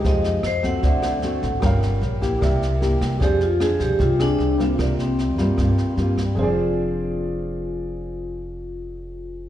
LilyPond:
<<
  \new Staff \with { instrumentName = "Grand piano" } { \time 4/4 \key c \phrygian \tempo 4 = 152 <g' c'' ees''>2 <fis' a' c'' e''>2 | <g' bes' des'' f''>2 <g' bes' d'' e''>2 | \key f \dorian <aes' c'' d''>2.~ <aes' c'' d''>8 <g' aes' c'' f''>8 | <f' g' bes' d''>1 |
<aes' c'' d''>1~ | <aes' c'' d''>1 | }
  \new Staff \with { instrumentName = "Vibraphone" } { \time 4/4 \key c \phrygian ees''4 c''8 ges''2~ ges''8 | r1 | \key f \dorian g'8 f'8 aes'8 g'8 f'8 d'4 c'8 | bes8 c'4 c'2 r8 |
f'1~ | f'1 | }
  \new Staff \with { instrumentName = "Nylon-string guitar" } { \time 4/4 \key c \phrygian << { <gis dis' g'>4 r8 <a c' ges'>4. <a c' fis'>8 r8 | <des' f' bes'>4 r8 <bes e' g'>4. <bes e' g'>4 | \key f \dorian <c' d' aes'>8 r8 <c' d' aes'>4. <c' d' aes'>4 <g bes f'>8~ | <g bes f'>4. <g bes f'>4. <g bes f'>8 r8 |
<f c' d' aes'>1~ | <f c' d' aes'>1 | } \\ { f2 d2 | g2 c2 | f2 c2 | c2 g,2 |
r1 | r1 | } >> }
  \new Staff \with { instrumentName = "Upright bass" } { \clef bass \time 4/4 \key c \phrygian f,4 f,4 d,4. a,,8 | g,,4 bes,,4 c,4. c,8 | \key f \dorian f,4. c,16 r16 c,4 c,4 | c,4. g,16 r16 g,4 g,4 |
f,,1~ | f,,1 | }
  \new DrumStaff \with { instrumentName = "Drums" } \drummode { \time 4/4 <bd sn>8 sn8 <ss sn>8 <bd sn>8 <bd sn>8 <ss sn>8 sn8 <bd sn>8 | <bd ss sn>8 sn8 sn8 <bd sn>8 <bd ss sn>8 sn8 sn8 <bd ss sn>8 | <bd sn>8 sn8 <ss sn>8 <bd sn>8 <bd sn>8 <ss sn>8 sn8 <bd sn>8 | <bd ss sn>8 sn8 sn8 <bd sn>8 <bd ss sn>8 sn8 sn8 <bd ss sn>8 |
r4 r4 r4 r4 | r4 r4 r4 r4 | }
>>